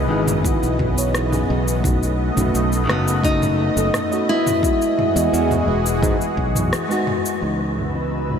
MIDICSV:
0, 0, Header, 1, 6, 480
1, 0, Start_track
1, 0, Key_signature, 4, "minor"
1, 0, Tempo, 697674
1, 1267, Time_signature, 4, 2, 24, 8
1, 5775, End_track
2, 0, Start_track
2, 0, Title_t, "Analog synth pad"
2, 0, Program_c, 0, 89
2, 0, Note_on_c, 0, 49, 80
2, 0, Note_on_c, 0, 52, 87
2, 0, Note_on_c, 0, 59, 72
2, 0, Note_on_c, 0, 75, 72
2, 1242, Note_off_c, 0, 49, 0
2, 1242, Note_off_c, 0, 75, 0
2, 1243, Note_off_c, 0, 52, 0
2, 1262, Note_on_c, 0, 57, 80
2, 1262, Note_on_c, 0, 75, 91
2, 3163, Note_off_c, 0, 59, 0
2, 3165, Note_off_c, 0, 57, 0
2, 3193, Note_on_c, 0, 68, 89
2, 3194, Note_on_c, 0, 66, 73
2, 3195, Note_on_c, 0, 52, 88
2, 5077, Note_off_c, 0, 75, 0
2, 5091, Note_off_c, 0, 66, 0
2, 5091, Note_off_c, 0, 68, 0
2, 5092, Note_off_c, 0, 52, 0
2, 5104, Note_on_c, 0, 71, 67
2, 5104, Note_on_c, 0, 88, 87
2, 5107, Note_on_c, 0, 63, 75
2, 5775, Note_off_c, 0, 63, 0
2, 5775, Note_off_c, 0, 71, 0
2, 5775, Note_off_c, 0, 88, 0
2, 5775, End_track
3, 0, Start_track
3, 0, Title_t, "Nylon-string guitar"
3, 0, Program_c, 1, 24
3, 0, Note_on_c, 1, 71, 99
3, 1002, Note_off_c, 1, 71, 0
3, 1996, Note_on_c, 1, 59, 83
3, 2215, Note_off_c, 1, 59, 0
3, 2232, Note_on_c, 1, 63, 99
3, 2950, Note_off_c, 1, 63, 0
3, 2953, Note_on_c, 1, 64, 97
3, 4842, Note_off_c, 1, 64, 0
3, 5775, End_track
4, 0, Start_track
4, 0, Title_t, "FM electric piano"
4, 0, Program_c, 2, 5
4, 54, Note_on_c, 2, 59, 71
4, 61, Note_on_c, 2, 63, 72
4, 70, Note_on_c, 2, 64, 73
4, 80, Note_on_c, 2, 68, 84
4, 272, Note_off_c, 2, 59, 0
4, 275, Note_off_c, 2, 63, 0
4, 280, Note_off_c, 2, 64, 0
4, 285, Note_off_c, 2, 68, 0
4, 293, Note_on_c, 2, 59, 81
4, 302, Note_on_c, 2, 63, 71
4, 309, Note_on_c, 2, 64, 73
4, 320, Note_on_c, 2, 66, 88
4, 633, Note_off_c, 2, 59, 0
4, 637, Note_off_c, 2, 63, 0
4, 641, Note_off_c, 2, 64, 0
4, 646, Note_off_c, 2, 66, 0
4, 649, Note_on_c, 2, 59, 78
4, 661, Note_on_c, 2, 63, 72
4, 668, Note_on_c, 2, 64, 72
4, 676, Note_on_c, 2, 73, 86
4, 870, Note_off_c, 2, 59, 0
4, 876, Note_off_c, 2, 63, 0
4, 879, Note_off_c, 2, 64, 0
4, 883, Note_off_c, 2, 73, 0
4, 893, Note_on_c, 2, 59, 83
4, 902, Note_on_c, 2, 63, 75
4, 911, Note_on_c, 2, 64, 72
4, 919, Note_on_c, 2, 68, 91
4, 1231, Note_off_c, 2, 59, 0
4, 1235, Note_off_c, 2, 63, 0
4, 1240, Note_off_c, 2, 64, 0
4, 1244, Note_off_c, 2, 68, 0
4, 1250, Note_on_c, 2, 57, 80
4, 1261, Note_on_c, 2, 61, 70
4, 1268, Note_on_c, 2, 63, 66
4, 1276, Note_on_c, 2, 66, 82
4, 1591, Note_off_c, 2, 57, 0
4, 1597, Note_off_c, 2, 61, 0
4, 1600, Note_off_c, 2, 63, 0
4, 1604, Note_off_c, 2, 66, 0
4, 1612, Note_on_c, 2, 57, 73
4, 1623, Note_on_c, 2, 61, 68
4, 1629, Note_on_c, 2, 63, 67
4, 1638, Note_on_c, 2, 66, 81
4, 1950, Note_off_c, 2, 57, 0
4, 1955, Note_off_c, 2, 61, 0
4, 1959, Note_off_c, 2, 63, 0
4, 1963, Note_off_c, 2, 66, 0
4, 1972, Note_on_c, 2, 57, 72
4, 1982, Note_on_c, 2, 61, 70
4, 1990, Note_on_c, 2, 63, 72
4, 1999, Note_on_c, 2, 66, 82
4, 2191, Note_off_c, 2, 57, 0
4, 2196, Note_off_c, 2, 61, 0
4, 2200, Note_off_c, 2, 63, 0
4, 2204, Note_off_c, 2, 66, 0
4, 2214, Note_on_c, 2, 57, 82
4, 2223, Note_on_c, 2, 61, 72
4, 2230, Note_on_c, 2, 63, 75
4, 2238, Note_on_c, 2, 66, 89
4, 2553, Note_off_c, 2, 57, 0
4, 2558, Note_off_c, 2, 61, 0
4, 2561, Note_off_c, 2, 63, 0
4, 2565, Note_off_c, 2, 66, 0
4, 2578, Note_on_c, 2, 57, 78
4, 2586, Note_on_c, 2, 61, 68
4, 2596, Note_on_c, 2, 63, 68
4, 2603, Note_on_c, 2, 69, 79
4, 2794, Note_off_c, 2, 57, 0
4, 2798, Note_off_c, 2, 61, 0
4, 2803, Note_off_c, 2, 63, 0
4, 2807, Note_off_c, 2, 69, 0
4, 2817, Note_on_c, 2, 57, 80
4, 2826, Note_on_c, 2, 61, 71
4, 2833, Note_on_c, 2, 75, 82
4, 2843, Note_on_c, 2, 66, 90
4, 3153, Note_off_c, 2, 57, 0
4, 3157, Note_off_c, 2, 61, 0
4, 3160, Note_off_c, 2, 75, 0
4, 3166, Note_off_c, 2, 66, 0
4, 3174, Note_on_c, 2, 56, 73
4, 3186, Note_on_c, 2, 59, 64
4, 3194, Note_on_c, 2, 75, 69
4, 3201, Note_on_c, 2, 66, 84
4, 3513, Note_off_c, 2, 56, 0
4, 3519, Note_off_c, 2, 59, 0
4, 3523, Note_off_c, 2, 75, 0
4, 3527, Note_off_c, 2, 66, 0
4, 3536, Note_on_c, 2, 56, 77
4, 3546, Note_on_c, 2, 59, 66
4, 3551, Note_on_c, 2, 75, 67
4, 3561, Note_on_c, 2, 66, 78
4, 3872, Note_off_c, 2, 56, 0
4, 3877, Note_off_c, 2, 59, 0
4, 3880, Note_off_c, 2, 75, 0
4, 3885, Note_off_c, 2, 66, 0
4, 3896, Note_on_c, 2, 56, 80
4, 3904, Note_on_c, 2, 59, 69
4, 3913, Note_on_c, 2, 75, 66
4, 3919, Note_on_c, 2, 66, 85
4, 4113, Note_off_c, 2, 56, 0
4, 4117, Note_off_c, 2, 59, 0
4, 4121, Note_off_c, 2, 75, 0
4, 4125, Note_off_c, 2, 66, 0
4, 4134, Note_on_c, 2, 56, 77
4, 4144, Note_on_c, 2, 59, 70
4, 4151, Note_on_c, 2, 75, 73
4, 4159, Note_on_c, 2, 66, 82
4, 4473, Note_off_c, 2, 56, 0
4, 4478, Note_off_c, 2, 59, 0
4, 4482, Note_off_c, 2, 75, 0
4, 4485, Note_off_c, 2, 66, 0
4, 4736, Note_on_c, 2, 56, 90
4, 4745, Note_on_c, 2, 59, 80
4, 4753, Note_on_c, 2, 63, 84
4, 4761, Note_on_c, 2, 66, 108
4, 5072, Note_off_c, 2, 56, 0
4, 5077, Note_off_c, 2, 59, 0
4, 5081, Note_off_c, 2, 63, 0
4, 5085, Note_off_c, 2, 66, 0
4, 5094, Note_on_c, 2, 52, 63
4, 5100, Note_on_c, 2, 56, 59
4, 5110, Note_on_c, 2, 59, 58
4, 5116, Note_on_c, 2, 63, 73
4, 5433, Note_off_c, 2, 52, 0
4, 5436, Note_off_c, 2, 56, 0
4, 5441, Note_off_c, 2, 59, 0
4, 5444, Note_off_c, 2, 63, 0
4, 5455, Note_on_c, 2, 52, 58
4, 5462, Note_on_c, 2, 56, 54
4, 5471, Note_on_c, 2, 59, 59
4, 5479, Note_on_c, 2, 63, 69
4, 5775, Note_off_c, 2, 52, 0
4, 5775, Note_off_c, 2, 56, 0
4, 5775, Note_off_c, 2, 59, 0
4, 5775, Note_off_c, 2, 63, 0
4, 5775, End_track
5, 0, Start_track
5, 0, Title_t, "Fingered electric bass"
5, 0, Program_c, 3, 33
5, 0, Note_on_c, 3, 37, 87
5, 73, Note_off_c, 3, 37, 0
5, 73, Note_on_c, 3, 32, 81
5, 379, Note_off_c, 3, 32, 0
5, 434, Note_on_c, 3, 35, 79
5, 978, Note_off_c, 3, 35, 0
5, 1032, Note_on_c, 3, 35, 88
5, 1578, Note_off_c, 3, 35, 0
5, 1632, Note_on_c, 3, 35, 90
5, 1716, Note_off_c, 3, 35, 0
5, 1751, Note_on_c, 3, 35, 88
5, 1990, Note_off_c, 3, 35, 0
5, 1990, Note_on_c, 3, 30, 76
5, 2537, Note_off_c, 3, 30, 0
5, 2592, Note_on_c, 3, 30, 91
5, 2676, Note_off_c, 3, 30, 0
5, 3549, Note_on_c, 3, 40, 89
5, 3635, Note_off_c, 3, 40, 0
5, 3669, Note_on_c, 3, 40, 89
5, 3907, Note_on_c, 3, 28, 78
5, 3917, Note_off_c, 3, 40, 0
5, 4146, Note_on_c, 3, 44, 88
5, 4156, Note_off_c, 3, 28, 0
5, 4235, Note_off_c, 3, 44, 0
5, 4385, Note_on_c, 3, 35, 87
5, 4626, Note_off_c, 3, 35, 0
5, 5107, Note_on_c, 3, 37, 69
5, 5775, Note_off_c, 3, 37, 0
5, 5775, End_track
6, 0, Start_track
6, 0, Title_t, "Drums"
6, 189, Note_on_c, 9, 45, 84
6, 192, Note_on_c, 9, 69, 63
6, 258, Note_off_c, 9, 45, 0
6, 260, Note_off_c, 9, 69, 0
6, 306, Note_on_c, 9, 36, 112
6, 311, Note_on_c, 9, 69, 52
6, 375, Note_off_c, 9, 36, 0
6, 380, Note_off_c, 9, 69, 0
6, 434, Note_on_c, 9, 69, 32
6, 503, Note_off_c, 9, 69, 0
6, 545, Note_on_c, 9, 36, 57
6, 551, Note_on_c, 9, 45, 80
6, 614, Note_off_c, 9, 36, 0
6, 619, Note_off_c, 9, 45, 0
6, 674, Note_on_c, 9, 69, 63
6, 743, Note_off_c, 9, 69, 0
6, 788, Note_on_c, 9, 37, 68
6, 791, Note_on_c, 9, 69, 51
6, 857, Note_off_c, 9, 37, 0
6, 860, Note_off_c, 9, 69, 0
6, 911, Note_on_c, 9, 45, 78
6, 914, Note_on_c, 9, 69, 31
6, 980, Note_off_c, 9, 45, 0
6, 983, Note_off_c, 9, 69, 0
6, 1155, Note_on_c, 9, 69, 65
6, 1224, Note_off_c, 9, 69, 0
6, 1266, Note_on_c, 9, 36, 108
6, 1271, Note_on_c, 9, 45, 84
6, 1274, Note_on_c, 9, 69, 53
6, 1335, Note_off_c, 9, 36, 0
6, 1340, Note_off_c, 9, 45, 0
6, 1342, Note_off_c, 9, 69, 0
6, 1396, Note_on_c, 9, 69, 32
6, 1465, Note_off_c, 9, 69, 0
6, 1630, Note_on_c, 9, 45, 75
6, 1633, Note_on_c, 9, 69, 58
6, 1699, Note_off_c, 9, 45, 0
6, 1702, Note_off_c, 9, 69, 0
6, 1754, Note_on_c, 9, 69, 51
6, 1822, Note_off_c, 9, 69, 0
6, 1875, Note_on_c, 9, 69, 31
6, 1943, Note_off_c, 9, 69, 0
6, 1992, Note_on_c, 9, 37, 75
6, 1992, Note_on_c, 9, 45, 81
6, 2060, Note_off_c, 9, 37, 0
6, 2060, Note_off_c, 9, 45, 0
6, 2118, Note_on_c, 9, 69, 67
6, 2187, Note_off_c, 9, 69, 0
6, 2226, Note_on_c, 9, 36, 108
6, 2234, Note_on_c, 9, 69, 47
6, 2295, Note_off_c, 9, 36, 0
6, 2303, Note_off_c, 9, 69, 0
6, 2354, Note_on_c, 9, 45, 81
6, 2357, Note_on_c, 9, 69, 30
6, 2423, Note_off_c, 9, 45, 0
6, 2425, Note_off_c, 9, 69, 0
6, 2595, Note_on_c, 9, 69, 64
6, 2664, Note_off_c, 9, 69, 0
6, 2711, Note_on_c, 9, 37, 71
6, 2711, Note_on_c, 9, 45, 73
6, 2713, Note_on_c, 9, 69, 49
6, 2780, Note_off_c, 9, 37, 0
6, 2780, Note_off_c, 9, 45, 0
6, 2782, Note_off_c, 9, 69, 0
6, 2836, Note_on_c, 9, 69, 33
6, 2905, Note_off_c, 9, 69, 0
6, 3073, Note_on_c, 9, 45, 89
6, 3075, Note_on_c, 9, 69, 64
6, 3141, Note_off_c, 9, 45, 0
6, 3144, Note_off_c, 9, 69, 0
6, 3185, Note_on_c, 9, 36, 112
6, 3194, Note_on_c, 9, 69, 56
6, 3254, Note_off_c, 9, 36, 0
6, 3263, Note_off_c, 9, 69, 0
6, 3314, Note_on_c, 9, 69, 30
6, 3383, Note_off_c, 9, 69, 0
6, 3431, Note_on_c, 9, 45, 78
6, 3500, Note_off_c, 9, 45, 0
6, 3554, Note_on_c, 9, 69, 61
6, 3622, Note_off_c, 9, 69, 0
6, 3674, Note_on_c, 9, 69, 52
6, 3743, Note_off_c, 9, 69, 0
6, 3790, Note_on_c, 9, 45, 80
6, 3793, Note_on_c, 9, 69, 32
6, 3859, Note_off_c, 9, 45, 0
6, 3862, Note_off_c, 9, 69, 0
6, 4032, Note_on_c, 9, 69, 66
6, 4101, Note_off_c, 9, 69, 0
6, 4146, Note_on_c, 9, 36, 112
6, 4149, Note_on_c, 9, 45, 74
6, 4152, Note_on_c, 9, 69, 51
6, 4214, Note_off_c, 9, 36, 0
6, 4218, Note_off_c, 9, 45, 0
6, 4221, Note_off_c, 9, 69, 0
6, 4274, Note_on_c, 9, 69, 30
6, 4342, Note_off_c, 9, 69, 0
6, 4385, Note_on_c, 9, 36, 58
6, 4454, Note_off_c, 9, 36, 0
6, 4511, Note_on_c, 9, 45, 84
6, 4514, Note_on_c, 9, 69, 63
6, 4580, Note_off_c, 9, 45, 0
6, 4583, Note_off_c, 9, 69, 0
6, 4629, Note_on_c, 9, 37, 72
6, 4631, Note_on_c, 9, 69, 48
6, 4697, Note_off_c, 9, 37, 0
6, 4700, Note_off_c, 9, 69, 0
6, 4754, Note_on_c, 9, 69, 31
6, 4823, Note_off_c, 9, 69, 0
6, 4866, Note_on_c, 9, 45, 74
6, 4935, Note_off_c, 9, 45, 0
6, 4992, Note_on_c, 9, 69, 66
6, 5061, Note_off_c, 9, 69, 0
6, 5111, Note_on_c, 9, 69, 46
6, 5180, Note_off_c, 9, 69, 0
6, 5234, Note_on_c, 9, 69, 27
6, 5303, Note_off_c, 9, 69, 0
6, 5350, Note_on_c, 9, 45, 64
6, 5419, Note_off_c, 9, 45, 0
6, 5475, Note_on_c, 9, 69, 50
6, 5544, Note_off_c, 9, 69, 0
6, 5592, Note_on_c, 9, 69, 46
6, 5660, Note_off_c, 9, 69, 0
6, 5710, Note_on_c, 9, 45, 64
6, 5712, Note_on_c, 9, 69, 27
6, 5775, Note_off_c, 9, 45, 0
6, 5775, Note_off_c, 9, 69, 0
6, 5775, End_track
0, 0, End_of_file